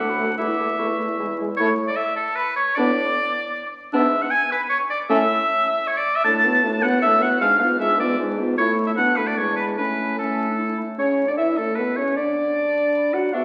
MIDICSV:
0, 0, Header, 1, 6, 480
1, 0, Start_track
1, 0, Key_signature, 3, "major"
1, 0, Tempo, 397614
1, 468, Time_signature, 3, 2, 24, 8
1, 3348, Tempo, 387597
1, 11028, Tempo, 403497
1, 13428, Tempo, 391645
1, 16436, End_track
2, 0, Start_track
2, 0, Title_t, "Flute"
2, 0, Program_c, 0, 73
2, 0, Note_on_c, 0, 86, 93
2, 121, Note_on_c, 0, 83, 101
2, 139, Note_off_c, 0, 86, 0
2, 369, Note_on_c, 0, 81, 70
2, 387, Note_off_c, 0, 83, 0
2, 463, Note_off_c, 0, 81, 0
2, 470, Note_on_c, 0, 86, 103
2, 955, Note_on_c, 0, 85, 81
2, 973, Note_off_c, 0, 86, 0
2, 1683, Note_off_c, 0, 85, 0
2, 1929, Note_on_c, 0, 85, 107
2, 2296, Note_on_c, 0, 86, 100
2, 2314, Note_off_c, 0, 85, 0
2, 2395, Note_off_c, 0, 86, 0
2, 2402, Note_on_c, 0, 88, 107
2, 2474, Note_off_c, 0, 88, 0
2, 2640, Note_on_c, 0, 81, 107
2, 2871, Note_off_c, 0, 81, 0
2, 2878, Note_on_c, 0, 83, 99
2, 3098, Note_off_c, 0, 83, 0
2, 3106, Note_on_c, 0, 85, 113
2, 3336, Note_on_c, 0, 86, 110
2, 3355, Note_off_c, 0, 85, 0
2, 4543, Note_off_c, 0, 86, 0
2, 4780, Note_on_c, 0, 88, 109
2, 5145, Note_on_c, 0, 90, 104
2, 5163, Note_off_c, 0, 88, 0
2, 5258, Note_on_c, 0, 92, 112
2, 5276, Note_off_c, 0, 90, 0
2, 5499, Note_on_c, 0, 83, 100
2, 5517, Note_off_c, 0, 92, 0
2, 5742, Note_off_c, 0, 83, 0
2, 5750, Note_on_c, 0, 85, 120
2, 5976, Note_off_c, 0, 85, 0
2, 5984, Note_on_c, 0, 86, 125
2, 6058, Note_off_c, 0, 86, 0
2, 6218, Note_on_c, 0, 88, 115
2, 7159, Note_off_c, 0, 88, 0
2, 7177, Note_on_c, 0, 85, 106
2, 7232, Note_off_c, 0, 85, 0
2, 7302, Note_on_c, 0, 86, 117
2, 7539, Note_on_c, 0, 88, 107
2, 7557, Note_off_c, 0, 86, 0
2, 7647, Note_on_c, 0, 93, 121
2, 7666, Note_off_c, 0, 88, 0
2, 8361, Note_on_c, 0, 90, 122
2, 8379, Note_off_c, 0, 93, 0
2, 8608, Note_off_c, 0, 90, 0
2, 8615, Note_on_c, 0, 88, 120
2, 8841, Note_off_c, 0, 88, 0
2, 8848, Note_on_c, 0, 90, 127
2, 9075, Note_off_c, 0, 90, 0
2, 9082, Note_on_c, 0, 89, 122
2, 9311, Note_off_c, 0, 89, 0
2, 9319, Note_on_c, 0, 89, 113
2, 9562, Note_off_c, 0, 89, 0
2, 9575, Note_on_c, 0, 88, 125
2, 9816, Note_on_c, 0, 86, 103
2, 9834, Note_off_c, 0, 88, 0
2, 10059, Note_off_c, 0, 86, 0
2, 10555, Note_on_c, 0, 85, 110
2, 10887, Note_off_c, 0, 85, 0
2, 10916, Note_on_c, 0, 88, 88
2, 10969, Note_off_c, 0, 88, 0
2, 11027, Note_on_c, 0, 90, 110
2, 11252, Note_on_c, 0, 83, 90
2, 11270, Note_off_c, 0, 90, 0
2, 11385, Note_on_c, 0, 86, 94
2, 11403, Note_off_c, 0, 83, 0
2, 11486, Note_on_c, 0, 85, 100
2, 11504, Note_off_c, 0, 86, 0
2, 11730, Note_on_c, 0, 83, 97
2, 11748, Note_off_c, 0, 85, 0
2, 11978, Note_off_c, 0, 83, 0
2, 11991, Note_on_c, 0, 83, 85
2, 12470, Note_on_c, 0, 81, 73
2, 12488, Note_off_c, 0, 83, 0
2, 13190, Note_off_c, 0, 81, 0
2, 13421, Note_on_c, 0, 78, 57
2, 13993, Note_off_c, 0, 78, 0
2, 14379, Note_on_c, 0, 76, 47
2, 14859, Note_off_c, 0, 76, 0
2, 14866, Note_on_c, 0, 78, 55
2, 15336, Note_off_c, 0, 78, 0
2, 15343, Note_on_c, 0, 81, 60
2, 15815, Note_off_c, 0, 81, 0
2, 15828, Note_on_c, 0, 83, 62
2, 16299, Note_on_c, 0, 85, 52
2, 16317, Note_off_c, 0, 83, 0
2, 16436, Note_off_c, 0, 85, 0
2, 16436, End_track
3, 0, Start_track
3, 0, Title_t, "Oboe"
3, 0, Program_c, 1, 68
3, 0, Note_on_c, 1, 78, 83
3, 448, Note_off_c, 1, 78, 0
3, 456, Note_on_c, 1, 76, 73
3, 1650, Note_off_c, 1, 76, 0
3, 1892, Note_on_c, 1, 73, 92
3, 2061, Note_off_c, 1, 73, 0
3, 2266, Note_on_c, 1, 74, 94
3, 2371, Note_on_c, 1, 76, 97
3, 2389, Note_off_c, 1, 74, 0
3, 2603, Note_off_c, 1, 76, 0
3, 2611, Note_on_c, 1, 69, 84
3, 2845, Note_on_c, 1, 71, 93
3, 2863, Note_off_c, 1, 69, 0
3, 3087, Note_off_c, 1, 71, 0
3, 3094, Note_on_c, 1, 73, 98
3, 3321, Note_on_c, 1, 74, 103
3, 3339, Note_off_c, 1, 73, 0
3, 4536, Note_off_c, 1, 74, 0
3, 4788, Note_on_c, 1, 76, 95
3, 5137, Note_on_c, 1, 78, 96
3, 5156, Note_off_c, 1, 76, 0
3, 5252, Note_on_c, 1, 80, 111
3, 5271, Note_off_c, 1, 78, 0
3, 5500, Note_off_c, 1, 80, 0
3, 5512, Note_on_c, 1, 71, 89
3, 5619, Note_off_c, 1, 71, 0
3, 5724, Note_on_c, 1, 73, 96
3, 5837, Note_off_c, 1, 73, 0
3, 5984, Note_on_c, 1, 74, 86
3, 6093, Note_off_c, 1, 74, 0
3, 6231, Note_on_c, 1, 76, 116
3, 7188, Note_on_c, 1, 73, 92
3, 7207, Note_off_c, 1, 76, 0
3, 7310, Note_on_c, 1, 74, 96
3, 7328, Note_off_c, 1, 73, 0
3, 7541, Note_on_c, 1, 76, 109
3, 7559, Note_off_c, 1, 74, 0
3, 7637, Note_off_c, 1, 76, 0
3, 7644, Note_on_c, 1, 81, 116
3, 8369, Note_on_c, 1, 78, 111
3, 8387, Note_off_c, 1, 81, 0
3, 8599, Note_off_c, 1, 78, 0
3, 8607, Note_on_c, 1, 76, 111
3, 8855, Note_on_c, 1, 78, 101
3, 8873, Note_off_c, 1, 76, 0
3, 9086, Note_off_c, 1, 78, 0
3, 9093, Note_on_c, 1, 77, 120
3, 9306, Note_off_c, 1, 77, 0
3, 9314, Note_on_c, 1, 77, 95
3, 9427, Note_off_c, 1, 77, 0
3, 9570, Note_on_c, 1, 76, 106
3, 9809, Note_off_c, 1, 76, 0
3, 9821, Note_on_c, 1, 74, 89
3, 10056, Note_off_c, 1, 74, 0
3, 10540, Note_on_c, 1, 73, 94
3, 10704, Note_off_c, 1, 73, 0
3, 10896, Note_on_c, 1, 76, 77
3, 10953, Note_off_c, 1, 76, 0
3, 11018, Note_on_c, 1, 78, 107
3, 11253, Note_on_c, 1, 71, 82
3, 11271, Note_off_c, 1, 78, 0
3, 11378, Note_on_c, 1, 74, 80
3, 11396, Note_off_c, 1, 71, 0
3, 11505, Note_on_c, 1, 73, 85
3, 11523, Note_off_c, 1, 74, 0
3, 11721, Note_off_c, 1, 73, 0
3, 11729, Note_on_c, 1, 71, 71
3, 11840, Note_off_c, 1, 71, 0
3, 11983, Note_on_c, 1, 71, 85
3, 12460, Note_off_c, 1, 71, 0
3, 12470, Note_on_c, 1, 69, 64
3, 13176, Note_off_c, 1, 69, 0
3, 13421, Note_on_c, 1, 73, 58
3, 13585, Note_off_c, 1, 73, 0
3, 13772, Note_on_c, 1, 74, 53
3, 13830, Note_off_c, 1, 74, 0
3, 13898, Note_on_c, 1, 76, 68
3, 14134, Note_on_c, 1, 69, 58
3, 14152, Note_off_c, 1, 76, 0
3, 14361, Note_on_c, 1, 71, 67
3, 14379, Note_off_c, 1, 69, 0
3, 14618, Note_on_c, 1, 73, 59
3, 14636, Note_off_c, 1, 71, 0
3, 14862, Note_off_c, 1, 73, 0
3, 14870, Note_on_c, 1, 74, 64
3, 16059, Note_on_c, 1, 78, 64
3, 16077, Note_off_c, 1, 74, 0
3, 16291, Note_off_c, 1, 78, 0
3, 16299, Note_on_c, 1, 62, 53
3, 16408, Note_off_c, 1, 62, 0
3, 16436, End_track
4, 0, Start_track
4, 0, Title_t, "Clarinet"
4, 0, Program_c, 2, 71
4, 215, Note_on_c, 2, 66, 61
4, 326, Note_off_c, 2, 66, 0
4, 462, Note_on_c, 2, 64, 77
4, 572, Note_off_c, 2, 64, 0
4, 703, Note_on_c, 2, 64, 55
4, 813, Note_off_c, 2, 64, 0
4, 946, Note_on_c, 2, 64, 63
4, 1056, Note_off_c, 2, 64, 0
4, 1183, Note_on_c, 2, 64, 55
4, 1294, Note_off_c, 2, 64, 0
4, 1436, Note_on_c, 2, 64, 57
4, 1546, Note_off_c, 2, 64, 0
4, 1671, Note_on_c, 2, 64, 54
4, 1783, Note_off_c, 2, 64, 0
4, 1926, Note_on_c, 2, 64, 92
4, 2093, Note_off_c, 2, 64, 0
4, 3347, Note_on_c, 2, 62, 85
4, 3515, Note_off_c, 2, 62, 0
4, 4780, Note_on_c, 2, 62, 90
4, 4951, Note_off_c, 2, 62, 0
4, 6228, Note_on_c, 2, 61, 95
4, 6394, Note_off_c, 2, 61, 0
4, 7665, Note_on_c, 2, 62, 88
4, 7918, Note_on_c, 2, 66, 75
4, 7936, Note_off_c, 2, 62, 0
4, 8157, Note_on_c, 2, 62, 78
4, 8176, Note_off_c, 2, 66, 0
4, 8394, Note_on_c, 2, 66, 68
4, 8413, Note_off_c, 2, 62, 0
4, 8605, Note_off_c, 2, 66, 0
4, 8612, Note_on_c, 2, 62, 68
4, 8862, Note_on_c, 2, 66, 79
4, 8880, Note_off_c, 2, 62, 0
4, 9099, Note_off_c, 2, 66, 0
4, 9106, Note_on_c, 2, 62, 83
4, 9355, Note_on_c, 2, 65, 72
4, 9374, Note_off_c, 2, 62, 0
4, 9570, Note_on_c, 2, 62, 79
4, 9588, Note_off_c, 2, 65, 0
4, 9818, Note_on_c, 2, 65, 69
4, 9837, Note_off_c, 2, 62, 0
4, 10060, Note_off_c, 2, 65, 0
4, 10075, Note_on_c, 2, 62, 63
4, 10306, Note_on_c, 2, 65, 69
4, 10324, Note_off_c, 2, 62, 0
4, 10542, Note_off_c, 2, 65, 0
4, 10549, Note_on_c, 2, 64, 92
4, 11025, Note_on_c, 2, 62, 79
4, 11043, Note_off_c, 2, 64, 0
4, 11495, Note_off_c, 2, 62, 0
4, 11502, Note_on_c, 2, 62, 70
4, 11994, Note_on_c, 2, 61, 67
4, 12012, Note_off_c, 2, 62, 0
4, 12466, Note_off_c, 2, 61, 0
4, 12473, Note_on_c, 2, 61, 79
4, 12806, Note_off_c, 2, 61, 0
4, 12836, Note_on_c, 2, 62, 62
4, 12941, Note_on_c, 2, 64, 74
4, 12959, Note_off_c, 2, 62, 0
4, 13196, Note_on_c, 2, 57, 58
4, 13214, Note_off_c, 2, 64, 0
4, 13416, Note_off_c, 2, 57, 0
4, 13423, Note_on_c, 2, 73, 75
4, 13761, Note_off_c, 2, 73, 0
4, 13804, Note_on_c, 2, 74, 63
4, 13855, Note_off_c, 2, 74, 0
4, 13896, Note_on_c, 2, 76, 77
4, 14008, Note_off_c, 2, 76, 0
4, 14148, Note_on_c, 2, 69, 60
4, 14402, Note_on_c, 2, 71, 67
4, 14420, Note_off_c, 2, 69, 0
4, 14629, Note_off_c, 2, 71, 0
4, 14637, Note_on_c, 2, 73, 62
4, 14854, Note_off_c, 2, 73, 0
4, 14861, Note_on_c, 2, 74, 75
4, 16038, Note_off_c, 2, 74, 0
4, 16059, Note_on_c, 2, 78, 71
4, 16303, Note_on_c, 2, 76, 74
4, 16321, Note_off_c, 2, 78, 0
4, 16436, Note_off_c, 2, 76, 0
4, 16436, End_track
5, 0, Start_track
5, 0, Title_t, "French horn"
5, 0, Program_c, 3, 60
5, 223, Note_on_c, 3, 57, 64
5, 333, Note_off_c, 3, 57, 0
5, 467, Note_on_c, 3, 57, 63
5, 576, Note_off_c, 3, 57, 0
5, 721, Note_on_c, 3, 57, 63
5, 827, Note_off_c, 3, 57, 0
5, 955, Note_on_c, 3, 57, 68
5, 1063, Note_off_c, 3, 57, 0
5, 1191, Note_on_c, 3, 57, 60
5, 1301, Note_off_c, 3, 57, 0
5, 1433, Note_on_c, 3, 56, 63
5, 1544, Note_off_c, 3, 56, 0
5, 1695, Note_on_c, 3, 56, 66
5, 1801, Note_off_c, 3, 56, 0
5, 1933, Note_on_c, 3, 57, 83
5, 2097, Note_off_c, 3, 57, 0
5, 3356, Note_on_c, 3, 59, 75
5, 3521, Note_off_c, 3, 59, 0
5, 4792, Note_on_c, 3, 59, 82
5, 4958, Note_off_c, 3, 59, 0
5, 6221, Note_on_c, 3, 57, 96
5, 6390, Note_off_c, 3, 57, 0
5, 7650, Note_on_c, 3, 57, 87
5, 7893, Note_on_c, 3, 59, 77
5, 7912, Note_off_c, 3, 57, 0
5, 8135, Note_on_c, 3, 57, 91
5, 8154, Note_off_c, 3, 59, 0
5, 8372, Note_on_c, 3, 59, 84
5, 8391, Note_off_c, 3, 57, 0
5, 8614, Note_off_c, 3, 59, 0
5, 8622, Note_on_c, 3, 57, 85
5, 8832, Note_on_c, 3, 59, 73
5, 8851, Note_off_c, 3, 57, 0
5, 9074, Note_off_c, 3, 59, 0
5, 9082, Note_on_c, 3, 56, 88
5, 9324, Note_on_c, 3, 59, 75
5, 9342, Note_off_c, 3, 56, 0
5, 9562, Note_on_c, 3, 56, 80
5, 9581, Note_off_c, 3, 59, 0
5, 9806, Note_on_c, 3, 59, 73
5, 9825, Note_off_c, 3, 56, 0
5, 10044, Note_off_c, 3, 59, 0
5, 10051, Note_on_c, 3, 56, 67
5, 10305, Note_on_c, 3, 59, 63
5, 10324, Note_off_c, 3, 56, 0
5, 10534, Note_off_c, 3, 59, 0
5, 10542, Note_on_c, 3, 57, 82
5, 10994, Note_off_c, 3, 57, 0
5, 11028, Note_on_c, 3, 59, 78
5, 11270, Note_on_c, 3, 57, 70
5, 11288, Note_off_c, 3, 59, 0
5, 11490, Note_off_c, 3, 57, 0
5, 11497, Note_on_c, 3, 56, 66
5, 11986, Note_on_c, 3, 57, 66
5, 12004, Note_off_c, 3, 56, 0
5, 12471, Note_off_c, 3, 57, 0
5, 12476, Note_on_c, 3, 57, 67
5, 13179, Note_off_c, 3, 57, 0
5, 13415, Note_on_c, 3, 61, 71
5, 13757, Note_off_c, 3, 61, 0
5, 13782, Note_on_c, 3, 62, 61
5, 13909, Note_on_c, 3, 64, 70
5, 13927, Note_off_c, 3, 62, 0
5, 14154, Note_on_c, 3, 57, 61
5, 14172, Note_off_c, 3, 64, 0
5, 14393, Note_on_c, 3, 59, 59
5, 14411, Note_off_c, 3, 57, 0
5, 14629, Note_off_c, 3, 59, 0
5, 14637, Note_on_c, 3, 61, 58
5, 14872, Note_on_c, 3, 62, 67
5, 14890, Note_off_c, 3, 61, 0
5, 16052, Note_on_c, 3, 66, 68
5, 16071, Note_off_c, 3, 62, 0
5, 16297, Note_off_c, 3, 66, 0
5, 16304, Note_on_c, 3, 59, 51
5, 16412, Note_off_c, 3, 59, 0
5, 16436, End_track
6, 0, Start_track
6, 0, Title_t, "Bassoon"
6, 0, Program_c, 4, 70
6, 0, Note_on_c, 4, 38, 85
6, 409, Note_off_c, 4, 38, 0
6, 458, Note_on_c, 4, 40, 79
6, 889, Note_off_c, 4, 40, 0
6, 943, Note_on_c, 4, 40, 71
6, 1375, Note_off_c, 4, 40, 0
6, 1440, Note_on_c, 4, 40, 76
6, 1869, Note_off_c, 4, 40, 0
6, 1926, Note_on_c, 4, 45, 91
6, 2324, Note_off_c, 4, 45, 0
6, 3344, Note_on_c, 4, 45, 101
6, 3747, Note_off_c, 4, 45, 0
6, 4778, Note_on_c, 4, 44, 84
6, 5183, Note_off_c, 4, 44, 0
6, 6220, Note_on_c, 4, 45, 102
6, 6622, Note_off_c, 4, 45, 0
6, 7661, Note_on_c, 4, 45, 102
6, 8081, Note_off_c, 4, 45, 0
6, 8144, Note_on_c, 4, 45, 85
6, 8563, Note_off_c, 4, 45, 0
6, 8622, Note_on_c, 4, 45, 96
6, 9043, Note_off_c, 4, 45, 0
6, 9091, Note_on_c, 4, 44, 98
6, 9517, Note_off_c, 4, 44, 0
6, 9565, Note_on_c, 4, 44, 93
6, 9996, Note_off_c, 4, 44, 0
6, 10052, Note_on_c, 4, 44, 97
6, 10482, Note_off_c, 4, 44, 0
6, 10539, Note_on_c, 4, 45, 76
6, 11026, Note_on_c, 4, 38, 75
6, 11044, Note_off_c, 4, 45, 0
6, 11488, Note_off_c, 4, 38, 0
6, 11495, Note_on_c, 4, 40, 77
6, 11978, Note_on_c, 4, 45, 66
6, 11996, Note_off_c, 4, 40, 0
6, 13188, Note_off_c, 4, 45, 0
6, 13427, Note_on_c, 4, 49, 59
6, 13783, Note_on_c, 4, 50, 56
6, 13802, Note_off_c, 4, 49, 0
6, 13893, Note_on_c, 4, 52, 67
6, 13911, Note_off_c, 4, 50, 0
6, 14124, Note_off_c, 4, 52, 0
6, 14132, Note_on_c, 4, 45, 56
6, 14378, Note_off_c, 4, 45, 0
6, 14385, Note_on_c, 4, 47, 57
6, 14626, Note_on_c, 4, 49, 55
6, 14645, Note_off_c, 4, 47, 0
6, 14859, Note_off_c, 4, 49, 0
6, 14866, Note_on_c, 4, 50, 69
6, 16062, Note_on_c, 4, 54, 66
6, 16081, Note_off_c, 4, 50, 0
6, 16305, Note_off_c, 4, 54, 0
6, 16312, Note_on_c, 4, 44, 54
6, 16418, Note_off_c, 4, 44, 0
6, 16436, End_track
0, 0, End_of_file